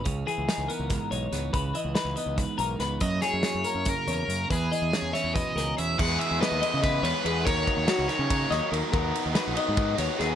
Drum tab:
CC |-------|-------|-------|-------|
RD |-------|-------|-------|-------|
HH |xxxxxxx|xxxxxxx|xxxxxxx|xxxxxxx|
SD |--o-o-o|--o-o-o|-oo----|--oo-o-|
BD |o---o--|o---o--|o---o--|o---o--|

CC |x------|-------|-------|
RD |-xxxxxx|xxxxxxx|xxxxxxx|
HH |-------|-------|-------|
SD |--o-o--|--oo-o-|--o--oo|
BD |o---o--|oo--o--|o---o--|